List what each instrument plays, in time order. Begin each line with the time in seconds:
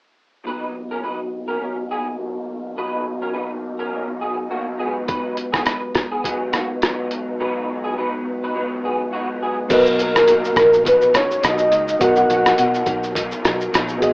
0.44 clean electric guitar B2 F#3 A#3 D#4 B4
0.91 clean electric guitar C#4 A#4
1.03 clean electric guitar B2 F#3 A#3 D#4 B4
1.48 clean electric guitar C#4 A#4
1.59 clean electric guitar B2 F#3 A#3 D#4
1.91 clean electric guitar B3 G#4
2.17 clean electric guitar B2 F#3 A#3 D#4
2.76 clean electric guitar B2 F#3 A#3 D#4 B4
3.22 clean electric guitar C#4 A#4
3.34 clean electric guitar B2 F#3 A#3 D#4 B4
3.79 clean electric guitar C#4 A#4
3.92 clean electric guitar B2 F#3 A#3 D#4
4.21 clean electric guitar B3 G#4
4.49 clean electric guitar B2 F#3 A#3 D#4 F#4
4.77 clean electric guitar F#3 B3 D#4 G#4
4.82 clean electric guitar G#2
5.08 clean electric guitar D#4 B4, kick, closed hi-hat
5.37 closed hi-hat
5.52 clean electric guitar B3 G#4, kick, cross-stick
5.65 clean electric guitar D#4 B4, cross-stick, closed hi-hat
5.95 kick, cross-stick, closed hi-hat
6.12 clean electric guitar B3 G#4
6.23 clean electric guitar G#2 F#3 B3 D#4, kick, closed hi-hat
6.52 clean electric guitar A#3 F#4, cross-stick, closed hi-hat
6.81 clean electric guitar G#2 F#3 B3 D#4, cross-stick, closed hi-hat
7.11 closed hi-hat
7.39 clean electric guitar G#2 F#3 B3 D#4 B4
7.84 clean electric guitar B3 G#4
7.96 clean electric guitar G#2 F#3 B3 D#4 B4
8.44 clean electric guitar D#4 B4
8.53 clean electric guitar G#2 F#3 B3 D#4
8.85 clean electric guitar B3 G#4
9.11 clean electric guitar G#2 F#3 B3 D#4 F#4
9.43 clean electric guitar B3 G#4
9.68 fingered electric bass B1, clean electric guitar B2 F#3 A#3 D#4, reed electric piano B3 F#4 A#4, kick, closed hi-hat, crash, shaker
9.72 soft synth lead B4, reed electric piano D#5
9.86 shaker
9.98 clean electric guitar F#3 A#3 D#4, soft synth lead A#4, closed hi-hat, shaker
10.16 cross-stick, shaker
10.27 clean electric guitar B2 F#3 A#3 D#4, closed hi-hat, shaker
10.45 shaker
10.56 fingered electric bass A#1, clean electric guitar F#3 A#3 D#4, kick, cross-stick, closed hi-hat, shaker
10.73 shaker
10.84 clean electric guitar B2 F#3 A#3 D#4, soft synth lead B4, kick, closed hi-hat, shaker
11.01 shaker
11.13 clean electric guitar F#3 A#3 D#4, soft synth lead C#5, cross-stick, closed hi-hat, shaker
11.31 shaker
11.40 fingered electric bass B1, clean electric guitar B2 F#3 A#3 D#4, soft synth lead D#5, closed hi-hat, shaker
11.45 cross-stick
11.58 shaker
11.70 fingered electric bass C#2, clean electric guitar F#3 A#3 D#4, closed hi-hat, shaker
11.88 shaker
11.99 fingered electric bass B1, clean electric guitar B2 F#3 A#3 D#4, reed electric piano B3 F#4 A#4, soft synth lead F#5, kick, closed hi-hat, shaker
12.05 reed electric piano D#5
12.16 shaker
12.29 fingered electric bass B1, clean electric guitar F#3 A#3 D#4, closed hi-hat, shaker
12.46 cross-stick, shaker
12.58 clean electric guitar B2 F#3 A#3 D#4, fingered electric bass B2, closed hi-hat, shaker
12.74 shaker
12.86 fingered electric bass B1, clean electric guitar F#3 A#3 D#4, kick, closed hi-hat, shaker
13.03 shaker
13.15 clean electric guitar B2 F#3 A#3 D#4, kick, closed hi-hat, shaker
13.31 shaker
13.43 fingered electric bass B1, clean electric guitar F#3 A#3 D#4, cross-stick, closed hi-hat, shaker
13.61 shaker
13.72 fingered electric bass A#1, clean electric guitar B2 F#3 A#3 D#4, cross-stick, closed hi-hat, shaker
13.88 shaker
13.98 fingered electric bass G#1, reed electric piano B3 F#4 G#4, clean electric guitar B3 D#4, closed hi-hat, shaker
14.03 clean electric guitar F#3, reed electric piano D#5